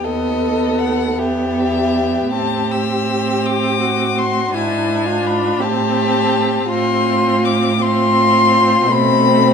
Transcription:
0.04 D#2 B3 A4 D#5
0.79 F#5
1.16 E2 B3 G4 E5
2.31 A2 C4 G4 A5
2.72 E6
3.46 D6
3.81 F#4
4.18 C6
4.53 G#2 D4 E4 G#5
5.06 F4
5.27 B5
5.60 A2 C4 G4 A5
6.70 A2 C4 F4 C6
7.45 D6
7.80 C4 F4 C6
8.90 B2 A3 C4 B5

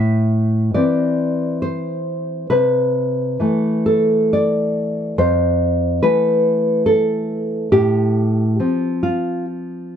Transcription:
Already playing: A2 E5
0.74 E3 C4 D5
1.62 C5
2.50 C3 B4
3.40 E3 A3
3.86 A4
4.33 D5
5.18 F2 C5
6.03 E3 A3 B4
6.86 A4
7.72 A2 G4
8.60 F3 C4
9.03 F4

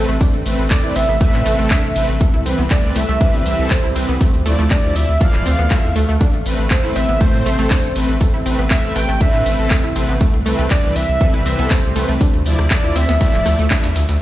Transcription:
Already playing: C3 A3 C4 A4 B4, sub drop
0.09 A1 A3, closed hi-hat, ride
0.21 D4, kick, closed hi-hat, open hi-hat
0.34 A1, closed hi-hat
0.46 A1 A3 C4 B4, open hi-hat, ride
0.59 A1, closed hi-hat
0.70 A4 D5, kick, snare, clap, closed hi-hat, ride
0.84 A1 A3 C4 E4 B4, closed hi-hat
0.96 A1 C4 E5, open hi-hat, ride
1.09 A1 B3, snare
1.21 A3 C4 B4 E5, kick, closed hi-hat, ride
1.34 A2, clap, closed hi-hat
1.46 A1 A3, open hi-hat, ride
1.59 A1 A3 C4 A4, closed hi-hat
1.71 D4 E5, kick, snare, clap, closed hi-hat, ride
1.84 A1, closed hi-hat
1.96 A1 A3 C4 B4, open hi-hat, ride
2.09 A1, closed hi-hat
2.21 G3 C4 G4 A4, kick, closed hi-hat, ride
2.34 C2 E4, closed hi-hat, ride
2.46 C2 E3 C4 B4, open hi-hat, ride
2.59 C2 B3, closed hi-hat
2.70 A3 D5, kick, snare, clap, closed hi-hat, ride
2.84 C2 E3 C4 B4, snare, closed hi-hat
2.96 C2 A3 E5, open hi-hat, ride
3.09 C2 A3, closed hi-hat
3.21 E3 C4 D4 B4, kick, closed hi-hat, ride
3.34 G1, snare, closed hi-hat
3.46 C2 E5, open hi-hat, ride
3.59 C2 E3 C4 A4, closed hi-hat, ride
3.70 A4 C5, kick, snare, clap, closed hi-hat, ride
3.84 C2 E4, closed hi-hat
3.96 C2 E3 C4 B4, snare, open hi-hat, ride
4.09 C2 B3, closed hi-hat, ride
4.21 D3 A3 A4, kick, closed hi-hat, open hi-hat
4.34 D2, closed hi-hat
4.46 D2 F3 A3 E4 D5, open hi-hat, ride
4.59 D2 A3, closed hi-hat
4.71 D4 D5, kick, snare, clap, closed hi-hat, ride
4.84 D2 F3 E4 D5, closed hi-hat
4.96 D2 E5, open hi-hat, ride
5.09 D2, snare, closed hi-hat
5.21 E3 F3 A4 D5 F5, kick, closed hi-hat, ride
5.34 D1 E4, clap, closed hi-hat
5.46 D2 C4, open hi-hat, ride
5.59 D2 B3, closed hi-hat
5.71 F3 A3 E4 E5, kick, snare, clap, closed hi-hat, ride
5.84 E2, closed hi-hat
5.96 D2 A3, open hi-hat, ride
6.09 D2 A3, closed hi-hat
6.21 C3 C4 D4, kick, closed hi-hat, ride
6.34 A1, closed hi-hat, ride
6.46 A1 A3 C4 B4, open hi-hat, ride
6.59 A1, closed hi-hat
6.71 A4 C5, kick, snare, clap, closed hi-hat, ride
6.84 A1 A3 C4 E4 B4, snare, closed hi-hat
6.96 A1 C4 E5, open hi-hat, ride
7.09 A1 B3, closed hi-hat
7.21 A3 C4 C5, kick, closed hi-hat, ride
7.34 A2, snare, closed hi-hat
7.46 A1 A3, open hi-hat, ride
7.59 A1 A3 C4 A4, closed hi-hat, ride
7.70 D4, kick, snare, clap, closed hi-hat, ride
7.84 A1, closed hi-hat
7.96 A1 A3 C4 B4, snare, open hi-hat, ride
8.09 A1, closed hi-hat, ride
8.21 A4, kick, closed hi-hat, open hi-hat
8.34 A1 E4, closed hi-hat
8.46 A1 A3 C4 B4, open hi-hat, ride
8.59 A1 B3, closed hi-hat
8.71 A3 E5, kick, snare, clap, closed hi-hat, ride
8.84 A1 A3 C4 B4, closed hi-hat
8.96 A1 A3 G5, open hi-hat, ride
9.09 A1 A3, snare, closed hi-hat
9.21 A3 C4 D4 B4 E5, kick, closed hi-hat, ride
9.34 A2, clap, closed hi-hat
9.46 A1, open hi-hat, ride
9.59 A1 A3 C4 A4, closed hi-hat
9.71 A4, kick, snare, clap, closed hi-hat, ride
9.84 A1 E4, closed hi-hat
9.96 A1 A3 C4 B4, open hi-hat, ride
10.09 A1 B3, closed hi-hat
10.21 G3 A3 C4 G4, kick, closed hi-hat, ride
10.34 C2, closed hi-hat, ride
10.46 C2 E3 A3 C4 B4, open hi-hat, ride
10.59 C2 A3, closed hi-hat
10.71 D4 D5, kick, snare, clap, closed hi-hat, ride
10.84 C2 E3 C4 B4, snare, closed hi-hat
10.96 C2 E5, open hi-hat, ride
11.09 C2, closed hi-hat, ride
11.21 E3 C4 A4 B4, kick, closed hi-hat, ride
11.34 G1 E4, closed hi-hat, ride
11.46 C2 C4 E5, open hi-hat, ride
11.59 C2 E3 B3 C4 A4, closed hi-hat, ride
11.71 A3 C5, kick, snare, clap, closed hi-hat, ride
11.84 C2, closed hi-hat
11.96 C2 E3 A3 C4 B4, snare, open hi-hat, ride
12.09 C2 A3, closed hi-hat, ride
12.21 D3 F3 A3 D4 A4, kick, closed hi-hat, open hi-hat
12.34 D2, closed hi-hat
12.46 D2 F3 E4 D5, open hi-hat, ride
12.59 D2, cross-stick, closed hi-hat
12.71 A4 D5, kick, snare, clap, closed hi-hat, ride
12.84 D2 F3 E4 D5, closed hi-hat
12.96 D2 C4 E5, snare, open hi-hat, ride
13.09 D2 B3, snare, closed hi-hat, ride
13.21 F3 A3 E4 D5 E5, kick, snare, closed hi-hat, ride
13.34 D1, clap, closed hi-hat
13.46 D2 A3, cross-stick, open hi-hat, ride
13.59 D2 A3, closed hi-hat
13.71 F3 D4 E4 E5, kick, snare, clap, open hi-hat, ride
13.84 E2, snare, closed hi-hat, ride
13.96 D2, snare, open hi-hat, ride
14.09 D2, snare, closed hi-hat, ride

